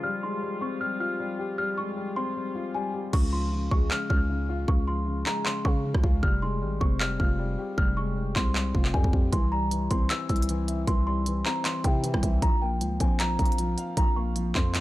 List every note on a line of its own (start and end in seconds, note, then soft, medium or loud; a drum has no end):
0.00 3.09 F3 medium
0.00 0.41 G3 medium
0.00 3.09 F4 medium
0.00 3.10 G4 medium
0.00 0.21 F6 medium
0.23 1.20 G#3 medium
0.23 0.59 C6 medium
0.42 0.79 G3 medium
0.61 1.58 C4 medium
0.61 0.79 C#6 medium
0.81 1.18 G3 medium
0.81 0.98 F6 medium
1.00 1.97 F4 medium
1.00 1.55 F6 medium
1.20 1.57 G3 medium
1.39 2.36 G4 medium
1.58 1.96 G3 medium
1.58 1.75 F6 medium
1.78 2.75 G#3 medium
1.78 2.14 C#6 medium
1.97 2.35 G3 medium
2.16 3.13 C4 medium
2.16 2.71 C6 medium
2.36 2.73 G3 medium
2.55 3.13 F4 medium
2.74 3.13 G3 medium
2.74 2.92 G#5 medium
2.94 3.13 G4 medium
3.13 3.69 C#2 loud
3.13 3.51 C#3 medium
3.13 3.30 C#6 medium
3.13 kick loud
3.13 crash loud
3.33 4.29 F3 medium
3.33 3.69 C6 medium
3.52 3.89 C#3 medium
3.71 3.90 C#2 loud
3.71 4.68 G#3 medium
3.71 3.88 C#6 medium
3.71 kick medium
3.91 4.28 C#3 medium
3.91 4.08 F6 medium
3.91 clap loud
4.10 4.66 C#2 loud
4.10 5.07 C#4 medium
4.10 4.64 F6 medium
4.10 kick medium
4.29 4.67 C#3 medium
4.49 5.46 F4 medium
4.68 5.24 C#2 loud
4.68 5.04 C#3 medium
4.68 4.85 C#6 medium
4.68 kick loud
4.88 5.84 F3 medium
4.88 5.24 C6 medium
5.06 5.44 C#3 medium
5.26 6.23 G#3 medium
5.26 5.43 A#5 medium
5.26 clap loud
5.45 5.83 C#3 medium
5.45 5.63 C6 medium
5.45 clap loud
5.65 5.93 C#3 loud
5.65 6.23 C#4 medium
5.65 6.19 C#6 medium
5.65 kick medium
5.85 6.23 C#3 medium
5.95 6.03 C#2 loud
5.95 kick loud
5.95 cross-stick loud
6.03 6.22 C#2 loud
6.03 6.23 F4 medium
6.03 kick loud
6.23 6.63 F1 loud
6.23 6.60 G3 medium
6.23 6.40 F6 medium
6.23 kick loud
6.42 7.39 G#3 medium
6.42 6.79 C6 medium
6.62 6.80 G#1 loud
6.62 6.99 G3 medium
6.80 7.18 F1 loud
6.80 7.77 C4 medium
6.80 6.98 C#6 medium
6.80 kick medium
7.00 7.37 G3 medium
7.00 7.17 F6 medium
7.00 clap loud
7.19 7.57 F1 loud
7.19 8.16 F4 medium
7.19 7.74 F6 medium
7.19 kick medium
7.39 7.76 G3 medium
7.58 8.55 G4 medium
7.78 8.34 F1 loud
7.78 8.15 G3 medium
7.78 7.95 F6 medium
7.78 kick loud
7.97 8.94 G#3 medium
7.97 8.33 C#6 medium
8.16 8.54 G3 medium
8.35 8.73 C2 loud
8.35 9.32 C4 medium
8.35 8.90 C6 medium
8.35 kick medium
8.35 clap loud
8.55 8.93 G3 medium
8.55 clap loud
8.74 8.93 F1 loud
8.74 9.33 F4 medium
8.74 kick medium
8.85 clap medium
8.94 9.31 F2 loud
8.94 9.33 G3 loud
8.94 9.11 G#5 medium
8.94 kick medium
9.04 kick loud
9.13 9.33 G4 medium
9.13 kick loud
9.32 9.88 C2 loud
9.32 9.70 E3 medium
9.32 9.50 C6 medium
9.32 kick loud
9.32 closed hi-hat medium
9.52 10.49 G3 medium
9.52 9.88 A#5 medium
9.71 10.08 E3 medium
9.71 closed hi-hat medium
9.90 10.09 C2 loud
9.90 10.87 C4 medium
9.90 10.08 C6 medium
9.90 kick medium
9.90 closed hi-hat medium
10.10 10.48 E3 medium
10.10 10.27 E6 loud
10.10 clap loud
10.10 closed hi-hat medium
10.29 10.85 C2 loud
10.29 11.26 E4 medium
10.29 10.84 E6 medium
10.29 kick medium
10.29 closed hi-hat soft
10.36 closed hi-hat medium
10.42 closed hi-hat medium
10.49 10.86 E3 medium
10.49 closed hi-hat medium
10.68 11.65 E5 medium
10.68 closed hi-hat medium
10.87 11.43 C2 loud
10.87 11.25 E3 medium
10.87 11.05 C6 medium
10.87 kick loud
10.87 closed hi-hat medium
11.07 12.04 G3 medium
11.07 11.43 C6 medium
11.26 11.63 E3 medium
11.26 closed hi-hat medium
11.45 12.42 C4 loud
11.45 11.63 A#5 medium
11.45 clap loud
11.65 12.02 E3 medium
11.65 11.82 C6 medium
11.65 clap loud
11.65 closed hi-hat medium
11.84 12.13 C3 loud
11.84 12.42 E4 medium
11.84 12.39 G5 medium
11.84 kick medium
11.84 closed hi-hat medium
12.03 12.42 E3 loud
12.03 closed hi-hat medium
12.14 12.22 C2 loud
12.14 kick loud
12.14 cross-stick loud
12.23 12.42 C2 loud
12.23 12.42 E5 medium
12.23 kick loud
12.23 closed hi-hat medium
12.42 12.83 A#1 loud
12.42 12.79 F3 medium
12.42 12.59 A#5 medium
12.42 kick loud
12.42 closed hi-hat medium
12.62 13.59 A#3 medium
12.62 12.98 G5 medium
12.81 12.99 C#2 loud
12.81 13.18 F3 medium
12.81 closed hi-hat medium
13.00 13.38 A#1 loud
13.00 13.97 C4 loud
13.00 13.18 G#5 medium
13.00 kick medium
13.00 closed hi-hat medium
13.20 13.58 F3 medium
13.20 13.37 A#5 medium
13.20 clap loud
13.20 closed hi-hat medium
13.39 13.76 A#1 loud
13.39 14.36 F4 medium
13.39 13.94 A#5 medium
13.39 kick medium
13.39 closed hi-hat soft
13.46 closed hi-hat medium
13.52 closed hi-hat medium
13.58 13.96 F3 medium
13.58 closed hi-hat medium
13.78 14.75 F5 medium
13.78 closed hi-hat medium
13.97 14.53 A#1 loud
13.97 14.34 F3 medium
13.97 14.14 A#5 medium
13.97 kick loud
13.97 closed hi-hat medium
14.16 14.80 A#3 medium
14.16 14.53 C#6 medium
14.36 14.73 F3 medium
14.36 closed hi-hat medium
14.55 14.80 F2 loud
14.55 14.80 C4 loud
14.55 14.80 C6 medium
14.55 kick loud
14.55 clap loud
14.74 14.80 F3 medium
14.74 clap loud
14.74 closed hi-hat medium